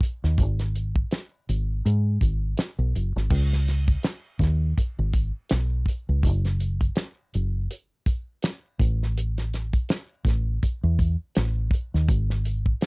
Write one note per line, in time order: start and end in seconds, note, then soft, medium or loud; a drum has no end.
0.01 kick loud
0.01 closed hi-hat medium
0.24 0.40 D#2 medium
0.24 snare soft
0.38 1.02 G#1 medium
0.38 kick loud
0.38 closed hi-hat medium
0.59 snare soft
0.59 closed hi-hat soft
0.75 closed hi-hat medium
0.96 kick loud
1.11 snare medium
1.11 closed hi-hat medium
1.49 1.80 G#1 medium
1.49 closed hi-hat medium
1.85 2.17 G#2 loud
1.85 closed hi-hat medium
2.21 2.53 G#1 medium
2.21 kick medium
2.21 closed hi-hat medium
2.57 snare loud
2.57 closed hi-hat medium
2.79 2.93 B1 medium
2.95 3.13 F#1 medium
2.95 closed hi-hat medium
3.16 3.30 G#1 medium
3.16 snare soft
3.31 3.95 C#2 loud
3.31 kick loud
3.31 crash loud
3.53 snare soft
3.68 snare soft
3.68 closed hi-hat medium
3.88 kick loud
3.88 closed hi-hat medium
4.03 snare loud
4.03 closed hi-hat medium
4.39 4.72 D#2 medium
4.39 kick loud
4.39 snare soft
4.39 closed hi-hat medium
4.78 kick medium
4.78 closed hi-hat medium
4.99 5.30 G#1 medium
5.14 kick medium
5.14 closed hi-hat medium
5.49 5.83 B1 medium
5.49 snare loud
5.49 closed hi-hat medium
5.86 kick medium
5.86 closed hi-hat medium
6.09 6.26 C#2 medium
6.23 6.88 F#1 loud
6.23 kick loud
6.23 closed hi-hat medium
6.45 snare soft
6.45 closed hi-hat medium
6.60 closed hi-hat medium
6.81 kick medium
6.81 closed hi-hat medium
6.96 snare loud
6.96 closed hi-hat medium
7.34 7.66 F#1 medium
7.34 closed hi-hat medium
7.71 closed hi-hat medium
8.06 kick loud
8.06 closed hi-hat medium
8.42 snare loud
8.42 closed hi-hat medium
8.79 9.76 A1 medium
8.79 kick loud
8.79 closed hi-hat medium
9.03 snare soft
9.18 closed hi-hat medium
9.38 snare soft
9.38 closed hi-hat medium
9.54 snare soft
9.54 closed hi-hat medium
9.73 kick medium
9.73 closed hi-hat medium
9.89 snare loud
9.89 closed hi-hat medium
10.25 10.57 A1 medium
10.25 kick loud
10.25 snare soft
10.25 closed hi-hat medium
10.63 muted fingered electric bass stroke soft
10.63 kick medium
10.63 closed hi-hat medium
10.83 11.15 E2 medium
10.99 kick loud
10.99 closed hi-hat medium
11.35 11.69 A1 medium
11.35 snare loud
11.35 closed hi-hat medium
11.71 kick loud
11.71 closed hi-hat medium
11.94 12.08 D#2 medium
11.94 snare soft
12.09 12.73 G#1 loud
12.09 kick loud
12.09 closed hi-hat medium
12.30 snare soft
12.45 closed hi-hat medium
12.66 kick medium
12.81 snare medium
12.81 closed hi-hat medium